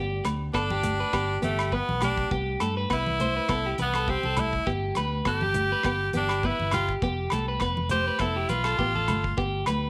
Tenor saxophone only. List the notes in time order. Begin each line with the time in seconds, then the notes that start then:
0.54 D4
1.44 A3
1.74 B3
2.04 D4
2.93 E4
3.82 B3
4.10 C4
4.39 E4
5.28 G4
6.17 D4
6.46 E4
6.74 F4
7.91 G4
8.20 E4
8.50 F4